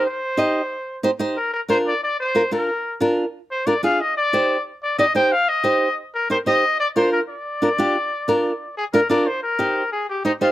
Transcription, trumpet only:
X:1
M:4/4
L:1/8
Q:1/4=182
K:Cm
V:1 name="Trumpet"
c6 z2 | B B c d d c2 B- | B2 z3 c d f | e d3 z d e g |
f e3 z B c e- | e d c B d4- | d4- d A B d | c B3 A G E F |]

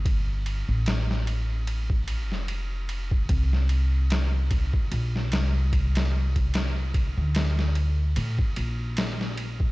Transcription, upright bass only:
X:1
M:4/4
L:1/16
Q:"Swing 16ths" 1/4=74
K:Bb
V:1 name="Upright bass" clef=bass
G,,,3 A,,,8 F,,,4- F,,, | C,,6- C,, z B,,,2 C,,6- | C,,3 D,,4- D,, A,, z B,,,6 |]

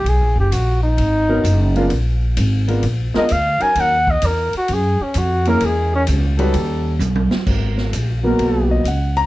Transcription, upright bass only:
X:1
M:4/4
L:1/8
Q:"Swing" 1/4=130
K:G#m
V:1 name="Upright bass" clef=bass
(3B,,, A,,, F,,, A,,,2 G,,,2 F,,,2 | A,,,2 G,,,2 A,,, z =D,, z | D,,2 E,, z F,, z ^E,,2 | E,,2 C,,2 D,,2 B,,, z |
G,,,2 A,,,2 B,,,2 C,,2 |]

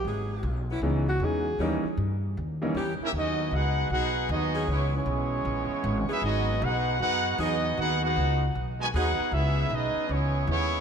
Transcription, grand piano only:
X:1
M:4/4
L:1/8
Q:"Swing" 1/4=155
K:G#m
V:1 name="Grand piano"
z4 [E,G,B,CD] z [E,G,B,CD] z | [E,=G,A,CD] z4 [E,G,A,CD] z2 | z8 | z8 |
z8 | z8 | z8 |]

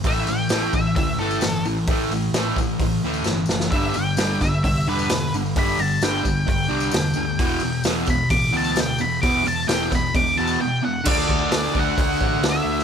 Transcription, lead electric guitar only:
X:1
M:4/4
L:1/8
Q:1/4=131
K:Em
V:1 name="Lead electric guitar"
e g2 e e A2 z | z8 | e g2 e e B2 z | b a g2 g4- |
g2 z b d' a g b | d' a g b d' a g f | d3 f f2 e2 |]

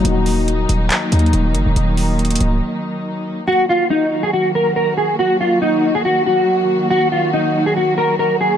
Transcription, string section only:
X:1
M:4/4
L:1/8
Q:1/4=140
K:Ebm
V:1 name="String section" clef=bass
[E,G,B,E]8- | [E,G,B,E]8 | [E,G,B,G]8- | [E,G,B,G]8- |
[E,G,B,G]8 |]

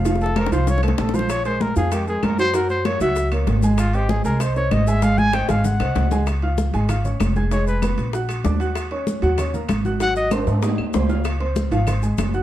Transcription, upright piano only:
X:1
M:4/4
L:1/8
Q:1/4=193
K:Ab
V:1 name="Upright piano"
[F,Ff]2 [=A,=Ac] [F,Ff]2 [A,Ac]2 [F,Ff]- | [F,Ff] [A,AB]2 [F,Ff] [A,AB] [A,AB]2 [_G,_G_g] | [_G,_G_g]2 [B,Bd] [G,Gg]2 [B,Bd]2 [A,Aa]- | [A,Aa] [Cce]2 [A,Aa] [Cce] [Cce]2 [A,Aa] |
[A,Aa]2 [Cce] [A,Aa]2 [Cce]2 [A,Aa] | [K:Db] z [Fff']2 [A,Aa] [Fff'] [Ddd']2 [Aaa'] | [A,Aa]2 [_C_c_c']2 [^F^f^f']2 [=D=d=d'] [Fff']- | [^F^f^f'] [Ddd']2 [G,Gg] [Ddd'] [B,Bb]2 [Ggg'] |
[G,Gg]2 [Ccc']2 [Eee']2 [Ccc'] [Fff']- | [Fff'] [Ccc']2 [F,Ff] [Ccc'] [A,Aa]2 [Ggg'] |]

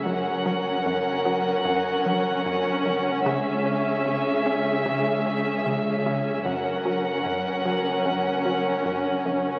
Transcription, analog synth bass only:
X:1
M:4/4
L:1/8
Q:1/4=75
K:F#mix
V:1 name="Analog synth bass" clef=bass
F,, F, F,, F, F,, F, F,, F,, | C, C C, C C, C C, C, | F,, F, F,, F, F,, F, F,, F,, |]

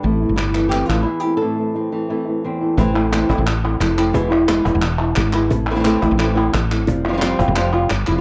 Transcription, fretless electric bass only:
X:1
M:4/4
L:1/16
Q:1/4=176
K:Am
V:1 name="Fretless electric bass" clef=bass
A,,,3 G,,,6- G,,, A,,,2 z4 | z16 | A,,,6 A,,, A,,,4- A,,, F,,,4 | E,,,6 E,,, E,,,4- E,,, ^G,,,4 |
A,,,6 A,,, A,,,4- A,,, A,,,4 | F,,,6 F,,, F,,,4- F,,, G,,,2 F,,,2 |]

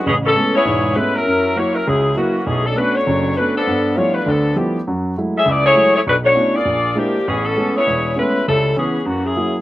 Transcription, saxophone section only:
X:1
M:4/4
L:1/16
Q:"Swing" 1/4=200
K:A
V:1 name="Saxophone section"
[E,B,CG]2 [E,B,CA]4 [B,EGc]6 [G,CEB]2 [F,CE_B]2- | [F,CE_B]4 [^A,EFc]2 [F,CE^A]2 [F,CEG]4 [E,A,CF]4 | [E,A,CG]2 [F,CDA]2 [A,DFB]2 [A,DFc]6 [A,DFB]2 [=F,B,DA]2- | [=F,B,DA]4 [A,D=Fc]2 [A,DFB]2 [F,B,DA]4 [F,B,D=G]3 z |
z6 [CGAe]2 [B,EGd]2 [A,EGc]4 [A,EGc]2 | [A,DFB]2 [A,DFc]4 [_B,=FGd]6 [=F,B,D=G]4 | [E,B,CG]2 [E,B,CA]4 [B,EGc]6 [G,CEB]4 | [=G,CEA]4 [E,B,C^G]4 [E,^A,CF]2 [F,CEG]4 z2 |]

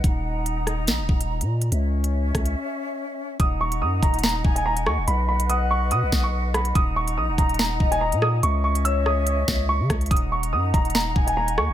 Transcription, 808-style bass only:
X:1
M:4/4
L:1/16
Q:1/4=143
K:Ebphr
V:1 name="808-style bass" clef=bass
E,,,8 B,,, E,,, E,,,3 B,,3 | D,,6 D,,2 z8 | E,,,4 G,,2 E,,,4 E,,,4 E,, E,,, | =B,,,8 =B,, B,,, B,,,6 |
E,,,4 B,,, E,,, E,,,4 E,,,3 B,,3 | D,,8- D,,2 D,,3 D, D,,2 | E,,,4 G,,2 E,,,4 E,,,4 E,, E,,, |]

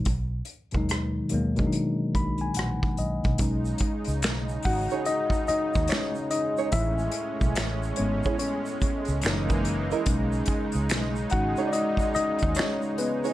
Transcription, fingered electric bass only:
X:1
M:4/4
L:1/16
Q:"Swing 16ths" 1/4=72
K:B
V:1 name="Fingered electric bass" clef=bass
B,,,2 z D,,3 D,,2 z2 B,,,2 A,,, z B,,, B,,, | [K:Bmix] B,,,2 z C,, B,,,2 G,,, z4 D,, z4 | A,,,2 z B,,, A,,,2 G,,, z4 C,, F,,,4 | B,,,2 z C,, B,,,2 G,,, z4 D,, z4 |]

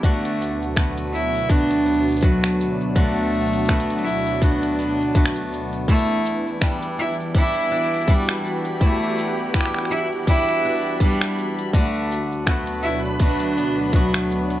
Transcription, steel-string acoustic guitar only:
X:1
M:4/4
L:1/8
Q:"Swing 16ths" 1/4=82
K:Em
V:1 name="Steel-string acoustic guitar"
[D,F]2 [A,B,F]2 [A,B,F] B, [A,B,F]2 | [D,F]2 [A,B,F]2 [A,B,F] B, [A,B,F]2 | [E,,E]2 [G,DE]2 [G,DE] D [G,DE]2 | [E,,E]2 [G,DE]2 [G,DE] D [G,DE]2 |
[D,F]2 [A,B,F]2 [A,B,F] B, [A,B,F]2 |]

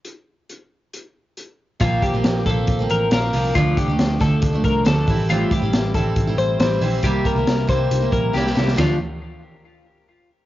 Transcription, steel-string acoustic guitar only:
X:1
M:4/4
L:1/16
Q:1/4=138
K:Dm
V:1 name="Steel-string acoustic guitar"
z16 | [B,,F,B,C]3 [F,B,C]3 [B,,F,B,C]3 [F,B,C]3 [B,,F,B,C]2 [B,,F,B,C]2 | [D,F,A,D]3 [F,A,D]3 [D,F,A,D]3 [F,A,D]3 [D,F,A,D]2 [E,G,CE]2 | [A,,E,G,CE]3 [G,CE]3 [E,G,CE]3 [G,CE]3 [E,G,CE]2 [E,G,CE]2 |
[C,G,B,E]3 [G,B,E]3 [C,G,B,E]3 [G,B,E]3 [C,G,B,E]2 [C,G,B,E]2 | [D,F,A,D]2 z12 z2 |]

